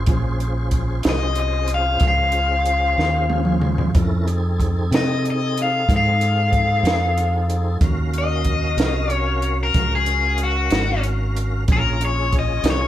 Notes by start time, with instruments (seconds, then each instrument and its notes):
0.06 fingered electric bass A#1, tonewheel organ C#4 F4 G#4 C5, kick, closed hi-hat
0.40 closed hi-hat
0.71 kick, closed hi-hat
1.03 fingered electric bass C2, snare, closed hi-hat
1.09 overdriven electric guitar D#5
1.35 closed hi-hat
1.40 overdriven electric guitar D#5
1.68 closed hi-hat
1.74 overdriven electric guitar F5
2.00 fingered electric bass C#2, kick, snare, closed hi-hat
2.08 overdriven electric guitar F5
2.32 closed hi-hat
2.65 closed hi-hat
2.98 fingered electric bass D#2, snare
3.30 high tom
3.45 mid tom
3.62 mid tom
3.78 floor tom
3.94 fingered electric bass F2, tonewheel organ C#4 E4 A4 A#4, kick, closed hi-hat
4.26 tonewheel organ C4 D#4 G#4 A4, closed hi-hat
4.60 kick, closed hi-hat
4.91 fingered electric bass C3, snare, closed hi-hat
4.95 overdriven electric guitar D#5
5.25 closed hi-hat
5.30 overdriven electric guitar D#5
5.57 closed hi-hat
5.62 overdriven electric guitar F5
5.89 fingered electric bass G#2, kick, snare, closed hi-hat
5.96 overdriven electric guitar F5
6.21 closed hi-hat
6.53 kick, closed hi-hat
6.83 fingered electric bass F2, closed hi-hat
6.87 snare
7.18 closed hi-hat
7.50 closed hi-hat
7.81 fingered electric bass D#2, tonewheel organ C#4 F#4 A#4 F5, kick, closed hi-hat
8.14 closed hi-hat
8.18 overdriven electric guitar D#5
8.44 kick, closed hi-hat
8.77 fingered electric bass C2, snare, closed hi-hat
9.10 overdriven electric guitar C#5, closed hi-hat
9.42 closed hi-hat
9.63 overdriven electric guitar A#4
9.74 fingered electric bass C#2, kick, snare, closed hi-hat
9.95 overdriven electric guitar G#4
10.06 closed hi-hat
10.38 closed hi-hat
10.44 overdriven electric guitar F#4
10.70 fingered electric bass G#1, snare, closed hi-hat
11.03 closed hi-hat
11.37 closed hi-hat
11.68 fingered electric bass A#1, tonewheel organ C#4 F4 G#4 C#5, kick, closed hi-hat
11.72 overdriven electric guitar A#4
12.01 closed hi-hat
12.05 overdriven electric guitar C#5
12.33 kick, closed hi-hat
12.39 overdriven electric guitar D#5
12.63 fingered electric bass C2, snare, closed hi-hat
12.70 overdriven electric guitar C#5